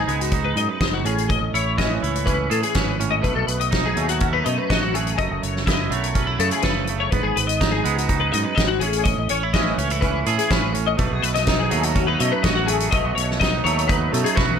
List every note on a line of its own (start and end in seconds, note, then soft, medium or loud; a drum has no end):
0.00 0.56 G#2 medium
0.00 0.32 D#4 soft
0.00 0.21 G#4 medium
0.08 0.52 C#2 medium
0.08 1.02 G#3 soft
0.08 1.05 B3 soft
0.08 closed hi-hat soft
0.21 0.45 F#4 medium
0.21 closed hi-hat soft
0.32 1.03 D#4 soft
0.32 kick medium
0.32 closed hi-hat medium
0.44 0.56 B4 medium
0.56 0.80 F#2 medium
0.56 0.67 G#2 medium
0.56 0.69 D#5 medium
0.56 closed hi-hat soft
0.69 0.81 B4 medium
0.80 1.03 F#1 medium
0.80 1.04 G#2 soft
0.80 0.93 D#5 medium
0.80 kick medium
0.80 snare medium
0.80 closed hi-hat soft
0.94 1.05 F#4 medium
1.04 1.37 A1 medium
1.04 2.97 A2 medium
1.04 1.77 C#4 soft
1.04 1.30 G#4 medium
1.04 closed hi-hat soft
1.18 closed hi-hat soft
1.29 1.54 D#5 medium
1.29 kick loud
1.29 closed hi-hat soft
1.41 1.52 A1 medium
1.54 1.98 A1 medium
1.54 2.01 E4 soft
1.54 1.78 C#5 medium
1.54 closed hi-hat soft
1.77 2.24 E3 medium
1.77 2.25 C#4 medium
1.77 2.01 D#5 medium
1.77 kick medium
1.77 snare medium
1.77 closed hi-hat soft
2.01 2.47 C#2 medium
2.01 2.97 E4 soft
2.01 2.26 C#5 medium
2.01 closed hi-hat soft
2.16 closed hi-hat soft
2.25 2.96 E3 medium
2.25 2.74 C#4 soft
2.25 2.50 B4 medium
2.25 kick medium
2.25 closed hi-hat medium
2.50 2.62 A2 medium
2.50 2.96 G#4 soft
2.50 2.62 A4 medium
2.50 closed hi-hat soft
2.63 2.75 G#4 medium
2.63 closed hi-hat soft
2.75 3.20 G#1 medium
2.75 2.96 C#4 medium
2.75 3.00 B4 medium
2.75 kick medium
2.75 snare medium
2.75 closed hi-hat soft
2.99 3.21 A2 medium
2.99 3.21 C#4 medium
2.99 closed hi-hat soft
3.11 3.23 D#5 medium
3.22 3.35 B1 medium
3.22 4.44 B2 medium
3.22 3.97 A3 soft
3.22 3.35 B4 medium
3.22 kick medium
3.22 closed hi-hat medium
3.35 3.47 B1 medium
3.35 3.47 A4 medium
3.47 3.93 B1 medium
3.47 3.60 B4 medium
3.47 closed hi-hat medium
3.60 3.84 D#5 medium
3.60 closed hi-hat soft
3.71 4.21 D#4 medium
3.71 kick medium
3.71 snare medium
3.71 closed hi-hat soft
3.86 4.10 G#4 medium
3.96 4.41 D#2 medium
3.96 5.70 F#3 soft
3.96 4.43 A3 soft
3.96 closed hi-hat soft
4.09 4.33 F#4 medium
4.09 closed hi-hat medium
4.20 4.33 C#4 soft
4.20 kick loud
4.20 closed hi-hat medium
4.33 5.18 D#4 soft
4.33 4.45 B4 medium
4.44 5.14 F#2 medium
4.44 4.57 B2 medium
4.44 4.93 A3 soft
4.44 4.57 D#5 medium
4.44 closed hi-hat soft
4.58 4.70 B4 medium
4.70 5.15 A1 medium
4.70 6.64 F#4 soft
4.70 4.82 D#5 medium
4.70 kick medium
4.70 snare medium
4.70 closed hi-hat medium
4.82 4.94 F#4 medium
4.94 5.17 A3 soft
4.94 5.18 G#4 medium
4.94 closed hi-hat medium
5.07 closed hi-hat soft
5.18 5.30 F#1 medium
5.18 7.09 F#2 medium
5.18 5.90 A3 soft
5.18 5.43 D#5 medium
5.18 kick medium
5.18 closed hi-hat medium
5.31 5.42 F#1 medium
5.43 5.87 F#1 medium
5.43 5.66 C#5 medium
5.43 closed hi-hat soft
5.57 snare soft
5.66 6.15 E4 soft
5.66 5.91 D#5 medium
5.66 kick medium
5.66 snare loud
5.66 closed hi-hat medium
5.90 6.35 B1 medium
5.90 7.09 F#3 medium
5.90 6.39 A3 medium
5.90 6.15 C#5 medium
5.90 closed hi-hat soft
6.04 closed hi-hat soft
6.15 6.27 C#4 soft
6.15 6.40 B4 medium
6.15 kick medium
6.15 closed hi-hat medium
6.27 7.12 E4 soft
6.39 6.50 F#2 medium
6.39 7.09 C#3 medium
6.39 6.88 A3 soft
6.39 6.52 A4 medium
6.39 closed hi-hat soft
6.51 6.64 G#4 medium
6.51 closed hi-hat soft
6.62 7.09 F#1 medium
6.62 7.10 A4 medium
6.62 6.87 B4 medium
6.62 kick loud
6.62 snare medium
6.62 closed hi-hat soft
6.87 7.12 A3 soft
6.87 closed hi-hat soft
7.00 7.11 C#5 medium
7.11 7.24 G#1 medium
7.11 8.32 G#2 medium
7.11 7.85 B3 soft
7.11 7.24 B4 medium
7.11 kick medium
7.11 closed hi-hat medium
7.23 7.35 G#1 medium
7.23 7.36 G#4 medium
7.36 7.81 G#1 medium
7.36 7.47 B4 medium
7.36 closed hi-hat medium
7.47 7.72 D#5 medium
7.47 closed hi-hat medium
7.61 8.07 D#4 medium
7.61 kick loud
7.61 snare medium
7.61 closed hi-hat medium
7.71 7.96 G#4 medium
7.84 8.30 C#2 medium
7.84 8.78 G#3 medium
7.84 8.82 B3 soft
7.84 closed hi-hat soft
7.96 8.21 F#4 medium
7.96 closed hi-hat soft
8.09 8.79 D#4 soft
8.09 kick loud
8.09 closed hi-hat medium
8.20 8.32 B4 medium
8.32 8.56 F#2 medium
8.32 8.45 G#2 medium
8.32 8.44 D#5 medium
8.32 closed hi-hat medium
8.44 8.55 B4 medium
8.55 8.80 G#1 medium
8.55 8.81 G#2 medium
8.55 8.68 D#5 medium
8.55 kick medium
8.55 snare medium
8.55 closed hi-hat medium
8.67 8.81 F#4 medium
8.80 9.15 A1 medium
8.80 10.71 A2 medium
8.80 9.29 C#4 soft
8.80 9.05 G#4 medium
8.80 closed hi-hat medium
8.93 closed hi-hat medium
9.04 9.29 D#5 medium
9.04 kick loud
9.04 closed hi-hat medium
9.18 9.29 A1 medium
9.29 9.75 A1 medium
9.29 9.43 C#4 medium
9.29 9.53 C#5 medium
9.29 closed hi-hat medium
9.43 9.78 E4 soft
9.54 10.02 E3 medium
9.54 9.77 C#4 medium
9.54 9.78 D#5 medium
9.54 kick medium
9.54 snare medium
9.54 closed hi-hat medium
9.78 10.22 C#2 medium
9.78 9.91 C#4 medium
9.78 10.02 C#5 medium
9.78 closed hi-hat soft
9.90 10.75 E4 soft
9.90 closed hi-hat soft
10.01 10.72 E3 medium
10.01 10.49 C#4 medium
10.01 10.25 B4 medium
10.01 kick loud
10.01 closed hi-hat medium
10.25 10.38 A2 medium
10.25 10.72 G#4 medium
10.25 10.37 A4 medium
10.25 closed hi-hat medium
10.38 10.51 G#4 medium
10.38 closed hi-hat medium
10.50 10.95 A1 medium
10.50 10.72 C#4 medium
10.50 10.75 B4 medium
10.50 kick loud
10.50 snare loud
10.50 closed hi-hat medium
10.73 10.95 A2 medium
10.73 10.96 C#4 medium
10.73 closed hi-hat soft
10.87 10.99 D#5 medium
10.97 11.10 B1 medium
10.97 12.18 B2 medium
10.97 11.71 A3 medium
10.97 11.11 B4 medium
10.97 kick loud
10.97 closed hi-hat medium
11.11 11.22 B1 medium
11.11 11.22 G#4 medium
11.22 11.67 B1 medium
11.22 11.34 B4 medium
11.22 closed hi-hat medium
11.35 11.59 D#5 medium
11.35 snare soft
11.35 closed hi-hat medium
11.47 11.95 D#4 medium
11.47 kick medium
11.47 snare medium
11.47 closed hi-hat medium
11.59 11.84 G#4 medium
11.71 12.16 D#2 medium
11.71 12.88 F#3 medium
11.71 12.19 A3 medium
11.71 closed hi-hat medium
11.83 12.07 F#4 medium
11.83 closed hi-hat medium
11.95 12.08 C#4 medium
11.95 kick loud
11.95 closed hi-hat medium
12.07 12.92 D#4 soft
12.07 12.20 B4 medium
12.19 12.89 F#2 medium
12.19 12.31 B2 medium
12.19 12.68 A3 soft
12.19 12.31 D#5 medium
12.19 closed hi-hat medium
12.32 12.44 B4 medium
12.43 12.88 A1 medium
12.43 14.35 F#4 medium
12.43 12.55 D#5 medium
12.43 kick loud
12.43 snare loud
12.43 closed hi-hat medium
12.55 12.67 F#4 medium
12.66 12.92 A3 medium
12.66 12.91 G#4 medium
12.66 closed hi-hat medium
12.80 closed hi-hat medium
12.91 13.03 B1 medium
12.91 14.12 B2 medium
12.91 13.64 A3 medium
12.91 13.15 D#5 medium
12.91 kick loud
12.91 closed hi-hat medium
13.04 13.15 B1 medium
13.15 13.60 B1 medium
13.15 13.39 C#5 medium
13.15 closed hi-hat medium
13.31 snare soft
13.40 13.87 D#4 medium
13.40 13.64 D#5 medium
13.40 kick loud
13.40 snare loud
13.40 closed hi-hat medium
13.64 14.08 D#2 medium
13.64 14.59 F#3 medium
13.64 14.13 A3 medium
13.64 13.88 C#5 medium
13.64 closed hi-hat soft
13.79 closed hi-hat medium
13.88 14.59 D#4 medium
13.88 14.12 B4 medium
13.88 kick loud
13.88 closed hi-hat medium
14.12 14.59 F#2 medium
14.12 14.24 B2 medium
14.12 14.59 A3 medium
14.12 14.24 A4 medium
14.12 closed hi-hat medium
14.24 14.35 G#4 medium
14.24 closed hi-hat medium
14.35 14.59 B1 medium
14.35 14.59 F#4 medium
14.35 14.59 B4 medium
14.35 kick loud
14.35 snare medium
14.50 high tom soft